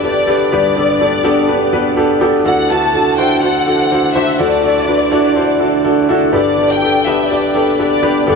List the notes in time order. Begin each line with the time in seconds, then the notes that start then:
Already playing: G1 G2 B3 D4 G4 A4 B4
0.03 B3 D4 G4 A4 D5
0.27 B3 D4 G4 A4
0.52 G1 G2 B3 D4 G4 B4 D5
0.76 B3 D4 G4 A4
1.00 B3 D4 G4 A4
1.24 B3 D4 G4 A4
1.48 B3 D4 G4 B4
1.73 B3 D4 G4 B4
1.97 B3 D4 G4 A4
2.21 B3 D4 G4 A4
2.45 D2 D3 D4 E4 F#4 A4 F#5
2.69 D4 E4 F#4 B4 A5
2.93 D4 E4 F#4 A4
3.17 D4 E4 F#4 C5 G5
3.42 D4 E4 F#4 C5 F#5
3.66 D4 E4 F#4 A4
3.91 D4 E4 F#4 C5
4.14 D4 E4 F#4 C5 E5
4.39 D2 D3 D4 E4 F#4 A4 D5
4.63 D4 E4 F#4 A4
4.87 D4 E4 F#4 B4
5.11 D4 E4 F#4 A4
5.36 D4 E4 F#4 C5
5.60 D4 E4 F#4 A4
5.84 D4 E4 F#4 A4
6.09 D4 E4 F#4 A4
6.32 G1 G2 B3 D4 G4 A4 D5
6.57 B3 D4 G4 A4
6.70 G5
6.82 B3 D4 G4 A4
7.06 B3 D4 G4 B4 E5
7.31 B3 D4 G4 B4 D5
7.55 B3 D4 G4 A4
7.79 B3 D4 G4 A4 D5
8.03 B3 D4 G4 B4
8.27 G1 G2 B3 D4 G4 A4 D5